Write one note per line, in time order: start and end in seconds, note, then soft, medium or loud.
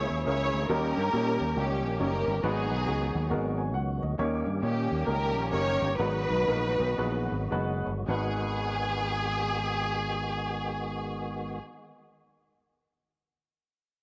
0.00 0.66 E3 medium
0.00 0.66 G#3 medium
0.00 0.10 A#3 medium
0.00 0.66 A#3 medium
0.00 0.10 C#4 medium
0.00 0.66 C#4 medium
0.00 0.10 E4 medium
0.00 0.22 E4 medium
0.00 0.22 G#4 medium
0.00 0.66 G#4 medium
0.00 0.10 A#4 medium
0.00 0.22 C#5 loud
0.10 0.24 D#2 loud
0.26 0.50 C#2 loud
0.26 0.54 G#3 medium
0.26 0.54 A#3 medium
0.26 0.54 C#4 medium
0.26 0.54 E4 medium
0.26 0.67 E4 medium
0.26 0.67 G#4 medium
0.26 0.54 A#4 medium
0.26 0.67 C#5 loud
0.54 0.67 D2 medium
0.69 0.93 D#2 loud
0.69 1.37 D#3 medium
0.69 2.41 D#3 medium
0.69 0.97 G3 loud
0.69 2.41 G3 medium
0.69 0.97 A#3 medium
0.69 2.41 A#3 medium
0.69 1.53 C#4 medium
0.69 2.41 C#4 medium
0.69 0.98 C#4 medium
0.69 0.98 D#4 medium
0.69 1.53 G4 medium
0.69 2.41 G4 medium
0.69 0.98 A#4 loud
0.69 1.57 A#4 loud
0.97 1.11 G2 medium
1.13 1.37 A#2 medium
1.13 1.41 G3 medium
1.13 1.41 A#3 medium
1.13 1.41 C#4 medium
1.13 1.41 D#4 medium
1.13 1.41 G4 medium
1.41 1.54 D#2 loud
1.57 1.84 C#2 loud
1.57 1.85 G3 medium
1.57 1.85 A#3 medium
1.57 2.41 A#3 medium
1.57 1.85 C#4 medium
1.57 2.00 C#4 medium
1.57 1.85 D#4 medium
1.57 1.85 G4 medium
1.57 2.00 G4 medium
1.84 1.98 A#1 loud
2.00 2.24 F#1 loud
2.00 2.28 G3 medium
2.00 2.28 A#3 medium
2.00 2.28 C#4 medium
2.00 2.41 C#4 medium
2.00 2.28 D#4 medium
2.00 2.42 G4 medium
2.00 2.45 A#4 medium
2.00 2.28 C#5 medium
2.28 2.41 G1 loud
2.43 2.71 G#1 loud
2.43 3.11 G#2 medium
2.43 4.15 D#3 medium
2.43 4.15 F#3 medium
2.43 2.71 G#3 loud
2.43 4.15 G#3 medium
2.43 2.71 B3 medium
2.43 3.27 B3 medium
2.43 4.15 B3 medium
2.43 2.71 D#4 medium
2.43 3.27 D#4 medium
2.43 2.72 F#4 medium
2.43 4.15 F#4 medium
2.43 3.28 G#4 medium
2.43 2.72 B4 loud
2.71 2.85 B1 medium
2.86 3.11 C#2 medium
2.86 3.15 G#3 medium
2.86 3.15 B3 medium
2.86 3.15 D#4 medium
2.86 3.15 F#4 medium
2.86 3.15 G#4 medium
3.15 3.32 D#2 loud
3.30 3.75 G#1 loud
3.30 3.59 G#3 medium
3.30 3.59 B3 medium
3.30 3.59 D#4 medium
3.30 3.59 F#4 medium
3.30 3.59 A#4 medium
3.58 3.73 G#5 medium
3.74 3.98 C#2 loud
3.74 4.01 F#5 medium
4.02 4.16 D2 medium
4.02 4.44 D#5 medium
4.18 4.42 D#2 loud
4.18 4.86 D#3 medium
4.18 5.96 D#3 medium
4.18 5.96 G3 medium
4.18 4.46 A#3 medium
4.18 5.96 A#3 medium
4.18 4.47 C#4 medium
4.18 5.96 C#4 medium
4.18 4.47 D#4 medium
4.18 4.26 E4 medium
4.18 4.47 G4 medium
4.18 4.47 C#5 loud
4.24 5.99 G4 medium
4.46 4.60 G2 medium
4.62 4.86 A#2 medium
4.62 4.91 A#3 medium
4.62 5.49 A#3 medium
4.62 4.91 C#4 medium
4.62 5.06 C#4 medium
4.62 4.91 D#4 medium
4.62 4.91 G4 medium
4.62 5.04 G4 medium
4.62 4.91 C#5 medium
4.91 5.05 D#2 medium
5.06 5.36 C#2 loud
5.06 5.36 A#3 medium
5.06 5.36 C#4 medium
5.06 5.96 C#4 medium
5.06 5.36 D#4 medium
5.06 5.36 G4 medium
5.06 5.53 G4 medium
5.06 5.52 A#4 loud
5.06 5.36 A#4 medium
5.36 5.50 A#1 loud
5.51 5.78 F#1 loud
5.51 5.82 A#3 medium
5.51 5.82 C#4 medium
5.51 5.82 D#4 medium
5.51 5.82 G4 medium
5.51 5.97 G4 medium
5.51 5.82 A#4 medium
5.51 5.97 A#4 medium
5.51 5.96 C#5 loud
5.82 5.97 G1 loud
5.97 6.25 G#1 loud
5.97 6.76 G#2 medium
5.97 8.05 D#3 medium
5.97 8.05 F#3 medium
5.97 6.30 G#3 medium
5.97 8.05 G#3 medium
5.97 6.30 B3 medium
5.97 8.05 B3 medium
5.97 6.30 D#4 medium
5.97 7.48 D#4 medium
5.97 6.30 F#4 medium
5.97 7.48 F#4 medium
5.97 8.05 F#4 medium
5.97 7.47 B4 loud
5.97 6.30 B4 medium
6.30 6.45 B1 loud
6.47 6.75 A#1 loud
6.47 6.80 G#3 medium
6.47 6.80 B3 medium
6.47 6.80 D#4 medium
6.47 6.80 F#4 medium
6.47 6.80 A#4 medium
6.80 6.96 B1 loud
6.98 7.27 A#1 loud
6.98 7.32 G#3 medium
6.98 7.32 B3 medium
6.98 7.33 D#4 medium
6.98 7.33 F#4 medium
6.98 7.33 B4 medium
7.32 7.49 G#1 medium
7.51 7.82 F#1 loud
7.51 7.87 G#3 medium
7.51 7.88 B3 medium
7.51 7.88 D#4 medium
7.51 7.88 F#4 medium
7.51 7.88 B4 loud
7.87 8.05 G1 medium
8.06 11.59 G#1 loud
8.06 11.59 G#1 medium
8.06 11.59 D#3 medium
8.06 11.57 G#3 medium
8.06 11.59 G#3 medium
8.06 11.59 B3 medium
8.06 11.58 D#4 medium
8.06 11.59 F#4 medium
8.06 11.60 F#4 medium
8.06 11.59 G#4 loud
8.06 11.61 B4 medium